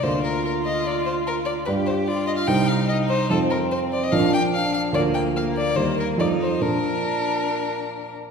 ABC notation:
X:1
M:4/4
L:1/16
Q:1/4=146
K:Bb
V:1 name="Violin"
c2 B2 B2 e2 d2 c2 B2 d2 | _c2 =c2 d2 e f g2 f2 e2 c2 | A2 B2 c2 d e f2 g2 f2 f2 | d2 g2 f2 d2 c2 B2 d2 c2 |
B12- B2 z2 |]
V:2 name="Violin"
F16 | G4 F4 E4 E4 | C8 D4 D4 | B,4 B,4 B,4 E4 |
D12- D2 z2 |]
V:3 name="Grand piano"
[D,,B,Fd]16 | [G,,G,Fd]8 [C,,G,Ec]8 | [F,,F,Ec]8 [B,,,F,DB]8 | [D,,F,FB]8 [E,,G,EB]4 [F,,F,EA]4 |
[B,,F,DB]16 |]